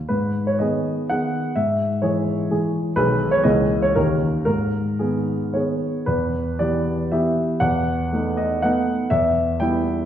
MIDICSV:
0, 0, Header, 1, 2, 480
1, 0, Start_track
1, 0, Key_signature, 5, "minor"
1, 0, Tempo, 495458
1, 103, Time_signature, 3, 2, 24, 8
1, 1066, Tempo, 470219
1, 3466, Tempo, 505902
1, 4426, Tempo, 532387
1, 5884, Key_signature, 1, "minor"
1, 6826, Tempo, 498339
1, 9647, End_track
2, 0, Start_track
2, 0, Title_t, "Grand piano"
2, 0, Program_c, 0, 0
2, 83, Note_on_c, 0, 71, 58
2, 94, Note_on_c, 0, 44, 45
2, 272, Control_c, 0, 64, 127
2, 450, Note_off_c, 0, 71, 0
2, 454, Note_on_c, 0, 73, 55
2, 565, Note_off_c, 0, 44, 0
2, 570, Note_on_c, 0, 75, 52
2, 579, Note_on_c, 0, 51, 35
2, 581, Note_off_c, 0, 73, 0
2, 582, Note_on_c, 0, 59, 41
2, 588, Note_on_c, 0, 68, 40
2, 593, Control_c, 0, 64, 0
2, 1024, Note_off_c, 0, 51, 0
2, 1026, Note_off_c, 0, 59, 0
2, 1029, Note_off_c, 0, 68, 0
2, 1058, Note_off_c, 0, 75, 0
2, 1061, Note_on_c, 0, 78, 67
2, 1068, Note_on_c, 0, 51, 34
2, 1072, Note_on_c, 0, 59, 31
2, 1075, Note_on_c, 0, 68, 33
2, 1497, Note_off_c, 0, 51, 0
2, 1499, Note_off_c, 0, 59, 0
2, 1501, Note_off_c, 0, 68, 0
2, 1530, Note_on_c, 0, 76, 59
2, 1535, Note_off_c, 0, 78, 0
2, 1538, Note_on_c, 0, 44, 44
2, 1726, Control_c, 0, 64, 127
2, 1998, Note_off_c, 0, 44, 0
2, 2002, Note_on_c, 0, 73, 57
2, 2009, Note_off_c, 0, 76, 0
2, 2009, Note_on_c, 0, 52, 42
2, 2012, Note_on_c, 0, 56, 40
2, 2017, Note_on_c, 0, 68, 43
2, 2460, Note_off_c, 0, 52, 0
2, 2461, Note_off_c, 0, 56, 0
2, 2464, Note_off_c, 0, 68, 0
2, 2498, Note_on_c, 0, 52, 40
2, 2498, Note_on_c, 0, 56, 35
2, 2507, Note_on_c, 0, 68, 45
2, 2516, Control_c, 0, 64, 0
2, 2735, Note_off_c, 0, 73, 0
2, 2929, Note_off_c, 0, 52, 0
2, 2929, Note_off_c, 0, 56, 0
2, 2933, Note_off_c, 0, 68, 0
2, 2964, Note_on_c, 0, 71, 79
2, 2970, Note_on_c, 0, 35, 58
2, 2970, Note_on_c, 0, 51, 39
2, 2975, Note_on_c, 0, 56, 40
2, 2984, Note_on_c, 0, 68, 38
2, 3175, Control_c, 0, 64, 127
2, 3325, Note_on_c, 0, 73, 77
2, 3331, Note_off_c, 0, 71, 0
2, 3424, Note_off_c, 0, 51, 0
2, 3426, Note_off_c, 0, 56, 0
2, 3431, Note_off_c, 0, 68, 0
2, 3450, Note_off_c, 0, 35, 0
2, 3450, Note_on_c, 0, 75, 71
2, 3457, Note_on_c, 0, 52, 42
2, 3459, Note_on_c, 0, 37, 57
2, 3460, Note_off_c, 0, 73, 0
2, 3466, Note_on_c, 0, 58, 37
2, 3471, Note_on_c, 0, 68, 38
2, 3478, Control_c, 0, 64, 0
2, 3632, Control_c, 0, 64, 127
2, 3819, Note_on_c, 0, 73, 71
2, 3824, Note_off_c, 0, 75, 0
2, 3907, Note_off_c, 0, 52, 0
2, 3912, Note_off_c, 0, 58, 0
2, 3914, Note_off_c, 0, 68, 0
2, 3932, Note_off_c, 0, 37, 0
2, 3943, Note_off_c, 0, 73, 0
2, 3943, Note_on_c, 0, 70, 71
2, 3947, Note_on_c, 0, 39, 51
2, 3950, Note_on_c, 0, 51, 39
2, 3954, Note_on_c, 0, 61, 35
2, 3960, Control_c, 0, 64, 0
2, 3961, Note_on_c, 0, 67, 37
2, 4139, Control_c, 0, 64, 127
2, 4388, Note_off_c, 0, 51, 0
2, 4390, Note_off_c, 0, 61, 0
2, 4394, Note_off_c, 0, 67, 0
2, 4401, Note_off_c, 0, 70, 0
2, 4411, Note_off_c, 0, 39, 0
2, 4415, Note_on_c, 0, 70, 71
2, 4426, Note_on_c, 0, 44, 47
2, 4434, Control_c, 0, 64, 0
2, 4615, Control_c, 0, 64, 127
2, 4898, Note_off_c, 0, 44, 0
2, 4903, Note_on_c, 0, 68, 37
2, 4908, Note_off_c, 0, 70, 0
2, 4910, Note_on_c, 0, 51, 35
2, 4913, Note_on_c, 0, 59, 38
2, 5368, Note_off_c, 0, 51, 0
2, 5370, Note_off_c, 0, 59, 0
2, 5393, Note_on_c, 0, 73, 50
2, 5395, Note_off_c, 0, 68, 0
2, 5403, Note_on_c, 0, 51, 30
2, 5404, Note_on_c, 0, 59, 31
2, 5408, Note_on_c, 0, 68, 33
2, 5417, Control_c, 0, 64, 0
2, 5846, Note_off_c, 0, 51, 0
2, 5847, Note_off_c, 0, 59, 0
2, 5849, Note_off_c, 0, 68, 0
2, 5868, Note_on_c, 0, 71, 58
2, 5876, Note_on_c, 0, 40, 48
2, 5877, Note_off_c, 0, 73, 0
2, 6086, Control_c, 0, 64, 127
2, 6339, Note_off_c, 0, 40, 0
2, 6344, Note_on_c, 0, 74, 57
2, 6349, Note_off_c, 0, 71, 0
2, 6351, Note_on_c, 0, 52, 37
2, 6357, Note_on_c, 0, 59, 33
2, 6358, Note_on_c, 0, 67, 39
2, 6787, Note_off_c, 0, 52, 0
2, 6791, Note_off_c, 0, 59, 0
2, 6791, Note_off_c, 0, 67, 0
2, 6817, Note_on_c, 0, 76, 54
2, 6820, Note_off_c, 0, 74, 0
2, 6821, Note_on_c, 0, 52, 40
2, 6826, Note_on_c, 0, 59, 41
2, 6829, Note_on_c, 0, 67, 49
2, 6833, Control_c, 0, 64, 0
2, 7256, Note_off_c, 0, 52, 0
2, 7259, Note_off_c, 0, 59, 0
2, 7260, Note_off_c, 0, 67, 0
2, 7284, Note_on_c, 0, 78, 75
2, 7291, Note_on_c, 0, 40, 52
2, 7293, Note_off_c, 0, 76, 0
2, 7468, Control_c, 0, 64, 127
2, 7779, Note_off_c, 0, 40, 0
2, 7787, Note_on_c, 0, 57, 37
2, 7793, Note_on_c, 0, 59, 36
2, 7798, Note_on_c, 0, 63, 38
2, 8027, Note_on_c, 0, 75, 63
2, 8040, Note_off_c, 0, 78, 0
2, 8241, Note_off_c, 0, 57, 0
2, 8244, Note_off_c, 0, 59, 0
2, 8247, Note_off_c, 0, 63, 0
2, 8269, Note_on_c, 0, 78, 68
2, 8274, Note_off_c, 0, 75, 0
2, 8280, Note_on_c, 0, 57, 43
2, 8284, Note_on_c, 0, 63, 45
2, 8285, Note_on_c, 0, 59, 43
2, 8296, Control_c, 0, 64, 0
2, 8698, Note_off_c, 0, 57, 0
2, 8700, Note_off_c, 0, 63, 0
2, 8701, Note_off_c, 0, 59, 0
2, 8729, Note_on_c, 0, 76, 75
2, 8731, Note_off_c, 0, 78, 0
2, 8737, Note_on_c, 0, 40, 53
2, 8922, Control_c, 0, 64, 127
2, 9203, Note_off_c, 0, 40, 0
2, 9207, Note_on_c, 0, 79, 71
2, 9214, Note_off_c, 0, 76, 0
2, 9215, Note_on_c, 0, 55, 39
2, 9221, Note_on_c, 0, 59, 41
2, 9224, Note_on_c, 0, 64, 43
2, 9647, Note_off_c, 0, 55, 0
2, 9647, Note_off_c, 0, 59, 0
2, 9647, Note_off_c, 0, 64, 0
2, 9647, Note_off_c, 0, 79, 0
2, 9647, End_track
0, 0, End_of_file